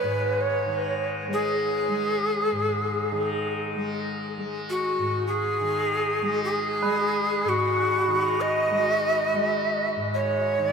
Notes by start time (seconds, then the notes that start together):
Already playing: D#3 G#3 B4 D#5
0.03 G#2
0.41 C#5
0.66 D#3
1.28 G#3
1.33 G#4
1.88 G#3
2.52 G#2
3.12 D#3
3.75 G#3
4.38 G#3
4.70 F#4
4.99 G#2
5.27 G#4
5.61 D#3
6.22 G#3
6.45 G#4
6.83 G#3 B4
7.45 G#2 F#4
8.08 D#3
8.41 D#5
8.71 G#3
9.34 G#3
9.96 G#2
10.15 C#5
10.59 D#3